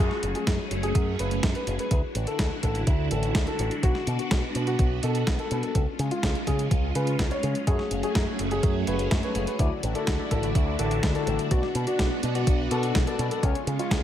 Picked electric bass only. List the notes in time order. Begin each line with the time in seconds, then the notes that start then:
0.23 F#1
0.47 F#2
0.71 F#1
0.95 F#2
1.19 F#1
1.43 F#2
1.67 F#1
1.91 D2
2.15 A1
2.39 D2
2.63 A1
2.87 D2
3.11 A1
3.35 D2
3.59 A1
3.83 B1
4.07 B2
4.31 B1
4.55 B2
4.79 B1
5.03 B2
5.27 B1
5.51 B2
5.75 C#2
5.99 C#3
6.23 C#2
6.47 C#3
6.71 C#2
6.95 C#3
7.19 C#2
7.43 C#3
7.67 F#2
7.91 F#1
8.15 F#2
8.39 F#1
8.63 F#2
8.87 F#1
9.11 F#2
9.35 F#1
9.59 D2
9.83 A1
10.07 D2
10.31 A1
10.55 D2
10.79 A1
11.03 D2
11.27 A1
11.51 B1
11.75 B2
11.99 B1
12.23 B2
12.47 B1
12.71 B2
12.95 B1
13.19 B2
13.43 C#2
13.67 C#3
13.91 C#2